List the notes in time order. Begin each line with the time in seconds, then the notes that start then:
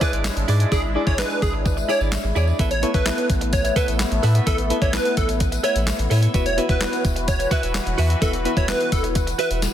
Already playing: G#3 D4 E4
0.01 E4 G#4 B4 D5, kick, closed hi-hat, tambourine
0.13 G#1 E4 G#4 D5, closed hi-hat
0.24 muted clean electric guitar stroke, snare, clap, closed hi-hat, tambourine
0.36 G#1, muted clean electric guitar stroke, closed hi-hat
0.48 G#2 E4 G#4 D5, open hi-hat, tambourine
0.60 E4 G#4 D5, closed hi-hat
0.71 G#1 D4 E4 G#4 D5, kick, tambourine
0.83 muted clean electric guitar stroke
0.95 D4 E4 G#4 D5
1.07 G#1 D4 E4 G#4 C#5 D5, kick
1.18 D4 E4 G#4 B4, muted clean electric guitar stroke, snare, clap, tambourine
1.30 muted clean electric guitar stroke, tambourine
1.42 G#1 G#4, kick, tambourine
1.53 muted clean electric guitar stroke
1.65 muted clean electric guitar stroke, kick, tambourine
1.77 muted clean electric guitar stroke, tambourine
1.89 E4 G#4 C#5 D5, tambourine
2.00 G#1 E4 G#4 D5, tambourine
2.12 snare, clap, tambourine
2.24 G#1, muted clean electric guitar stroke
2.35 E2 E4 G#4 D5, tambourine
2.47 E4 G#4 D5, tambourine
2.59 A1 A3 B3 E4 A4 B4 E5, kick, closed hi-hat, tambourine
2.71 C#5, muted clean electric guitar stroke, closed hi-hat
2.82 B3 E4 A4 B4 C#5 E5, closed hi-hat
2.94 A1 B3 E4 A4 B4 C#5 E5, kick, closed hi-hat
3.06 B3 E4 A4 B4, muted clean electric guitar stroke, snare, clap, closed hi-hat, tambourine
3.18 muted clean electric guitar stroke, closed hi-hat
3.29 A1, kick, closed hi-hat, tambourine
3.41 muted clean electric guitar stroke, closed hi-hat
3.53 C#5, muted clean electric guitar stroke, kick, closed hi-hat, tambourine
3.65 muted clean electric guitar stroke, closed hi-hat, tambourine
3.76 A4 B4 E5, kick, closed hi-hat, tambourine
3.88 A1 A4 B4 E5, closed hi-hat, tambourine
3.99 snare, clap, closed hi-hat, tambourine
4.11 A1, muted clean electric guitar stroke, closed hi-hat
4.23 A2 A4 B4 E5, open hi-hat, tambourine
4.35 A4 B4 E5, closed hi-hat, tambourine
4.46 A1 B3 E4 A4 B4 E5, kick, closed hi-hat, tambourine
4.58 muted clean electric guitar stroke, closed hi-hat
4.70 B3 E4 A4 B4 E5, closed hi-hat
4.82 A1 B3 E4 A4 B4 C#5 D5 E5, kick, closed hi-hat
4.93 B3 E4 A4 B4, snare, clap, closed hi-hat, tambourine
5.05 muted clean electric guitar stroke, closed hi-hat
5.17 A1 A4, kick, closed hi-hat, tambourine
5.29 muted clean electric guitar stroke, closed hi-hat, tambourine
5.40 muted clean electric guitar stroke, kick, closed hi-hat, tambourine
5.52 muted clean electric guitar stroke, closed hi-hat, tambourine
5.63 A4 B4 C#5 E5, closed hi-hat, tambourine
5.75 A1 A4 B4 E5, closed hi-hat, tambourine
5.87 snare, clap, closed hi-hat, tambourine
5.99 A1, muted clean electric guitar stroke, closed hi-hat
6.10 A2 A4 B4 E5, open hi-hat, tambourine
6.22 A4 B4 E5, closed hi-hat, tambourine
6.34 E1 E3 B3 E4 F#4 B4 E5, kick, closed hi-hat, tambourine
6.46 C#5, muted clean electric guitar stroke, closed hi-hat
6.57 B3 E4 F#4 B4 E5, closed hi-hat
6.69 E1 B3 E4 F#4 B4 E5, kick, closed hi-hat
6.81 B3 E4 F#4 B4, snare, clap, closed hi-hat, tambourine
6.92 muted clean electric guitar stroke, closed hi-hat, tambourine
7.04 E1, kick, closed hi-hat, tambourine
7.16 muted clean electric guitar stroke, closed hi-hat, tambourine
7.28 C#5, muted clean electric guitar stroke, kick, closed hi-hat, tambourine
7.39 muted clean electric guitar stroke, closed hi-hat, tambourine
7.51 F#4 B4 E5, kick, closed hi-hat, tambourine
7.63 E1 F#4 B4 E5, closed hi-hat, tambourine
7.74 muted clean electric guitar stroke, snare, clap, closed hi-hat, tambourine
7.86 E1, muted clean electric guitar stroke, closed hi-hat
7.98 E2 F#4 B4 E5, open hi-hat, tambourine
8.10 F#4 B4 E5, closed hi-hat
8.21 E1 B3 E4 F#4 A4 B4 E5, kick, closed hi-hat, tambourine
8.33 muted clean electric guitar stroke, closed hi-hat
8.45 B3 E4 F#4 B4 E5, closed hi-hat
8.57 E1 B3 E4 F#4 B4 C#5 E5, kick, closed hi-hat
8.68 B3 E4 F#4 B4, snare, clap, closed hi-hat, tambourine
8.80 muted clean electric guitar stroke, closed hi-hat
8.92 E1 A4, kick, closed hi-hat, tambourine
9.04 muted clean electric guitar stroke, closed hi-hat, tambourine
9.15 muted clean electric guitar stroke, kick, closed hi-hat, tambourine
9.27 muted clean electric guitar stroke, closed hi-hat, tambourine
9.38 F#4 B4 E5, closed hi-hat, tambourine
9.50 E1 F#4 B4 E5, closed hi-hat, tambourine
9.62 snare, closed hi-hat, tambourine